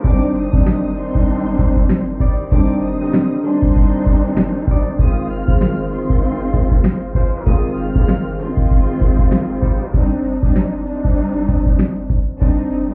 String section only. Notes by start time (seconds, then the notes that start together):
0.04 G3 C4 D4 D#4
0.51 G3 C4 D4 D#4
0.96 G3 C4 D4 D#4
2.50 G3 C4 D4 D#4
3.00 D3 G3 C4 D#4
3.44 G3 C4 D4 D#4
4.98 D#3 G#3 C4 F4
5.45 D#3 G#3 C4 F4
5.91 D#3 G#3 C4 F4
7.45 D#3 G#3 C4 F4
7.95 D#3 G#3 C4 F4
8.38 D#3 G#3 C4 F4
9.94 G3 C4 D4 D#4
10.40 G3 C4 D4 D#4
10.85 G3 C4 D4 D#4
12.40 G3 C4 D4 D#4
12.89 D3 G3 C4